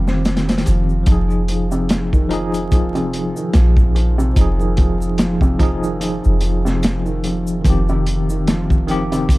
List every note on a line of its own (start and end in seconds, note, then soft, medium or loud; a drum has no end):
0.00 0.64 F1 medium
0.00 1.10 D#3 medium
0.00 0.66 F3 medium
0.00 1.10 G3 medium
0.00 0.08 C4 medium
0.00 1.10 C4 medium
0.00 1.10 G4 loud
0.07 0.18 C4 medium
0.07 snare soft
0.07 shaker soft
0.25 snare medium
0.25 closed hi-hat medium
0.25 shaker soft
0.37 snare medium
0.37 closed hi-hat medium
0.48 0.65 C4 medium
0.48 snare loud
0.48 closed hi-hat medium
0.48 shaker soft
0.58 snare medium
0.58 closed hi-hat medium
0.66 1.04 F1 medium
0.66 0.89 F3 medium
0.66 closed hi-hat medium
0.66 shaker medium
0.89 shaker soft
1.03 2.25 F3 medium
1.03 kick loud
1.03 closed hi-hat medium
1.03 shaker medium
1.07 3.32 F1 loud
1.07 1.21 F3 medium
1.07 2.27 D#4 medium
1.12 2.29 G#4 medium
1.31 shaker soft
1.48 1.70 F3 medium
1.48 closed hi-hat medium
1.72 2.11 C3 loud
1.72 shaker medium
1.89 snare loud
1.89 closed hi-hat medium
1.89 shaker medium
2.13 2.23 D#3 medium
2.13 kick medium
2.13 shaker soft
2.29 2.54 F3 medium
2.29 2.45 F3 medium
2.29 2.55 D#4 medium
2.29 closed hi-hat medium
2.33 2.56 G#4 loud
2.54 closed hi-hat soft
2.54 shaker medium
2.72 2.93 F3 medium
2.72 kick loud
2.72 closed hi-hat medium
2.72 shaker medium
2.95 3.34 C3 loud
2.95 closed hi-hat soft
2.95 shaker soft
3.13 closed hi-hat medium
3.36 3.47 D#3 medium
3.36 shaker medium
3.53 4.33 A#1 loud
3.53 3.68 F3 medium
3.53 snare loud
3.53 closed hi-hat medium
3.53 shaker medium
3.77 kick medium
3.77 shaker soft
3.95 4.16 F3 medium
3.95 closed hi-hat medium
4.18 4.57 C3 loud
4.18 shaker medium
4.33 6.20 F1 loud
4.33 5.54 F3 medium
4.33 kick loud
4.33 closed hi-hat medium
4.33 shaker medium
4.37 5.56 D#4 medium
4.41 5.58 G#4 medium
4.59 4.70 D#3 medium
4.59 shaker soft
4.77 4.91 F3 medium
4.77 kick medium
4.77 closed hi-hat medium
5.02 shaker medium
5.18 5.40 F3 medium
5.18 snare loud
5.18 closed hi-hat medium
5.18 shaker medium
5.41 5.81 C3 loud
5.41 kick medium
5.41 shaker soft
5.59 5.83 F3 medium
5.59 5.84 D#4 medium
5.59 kick medium
5.59 closed hi-hat medium
5.63 5.85 G#4 loud
5.83 5.93 D#3 medium
5.83 shaker medium
6.00 6.14 F3 medium
6.00 closed hi-hat medium
6.00 shaker medium
6.24 7.63 F1 loud
6.24 shaker soft
6.41 6.63 F3 medium
6.41 closed hi-hat medium
6.65 7.04 C3 loud
6.65 snare soft
6.65 shaker medium
6.83 snare loud
6.83 closed hi-hat medium
6.83 shaker medium
7.06 7.16 D#3 medium
7.06 shaker soft
7.24 7.38 F3 medium
7.24 closed hi-hat medium
7.47 shaker medium
7.61 9.38 F1 loud
7.61 8.82 D#3 medium
7.61 kick loud
7.61 closed hi-hat medium
7.61 shaker medium
7.65 7.86 F3 medium
7.65 8.85 C4 medium
7.70 8.87 G4 medium
7.89 8.28 C3 loud
7.89 shaker soft
8.06 closed hi-hat medium
8.30 8.40 D#3 medium
8.30 shaker medium
8.47 8.61 F3 medium
8.47 snare loud
8.47 closed hi-hat medium
8.47 shaker medium
8.70 kick medium
8.70 shaker soft
8.87 9.12 D#3 loud
8.87 9.10 F3 medium
8.87 9.13 C4 medium
8.87 closed hi-hat medium
8.91 9.14 G4 loud
9.12 9.38 C3 loud
9.12 closed hi-hat soft
9.12 shaker medium
9.29 kick loud
9.29 closed hi-hat medium
9.29 shaker medium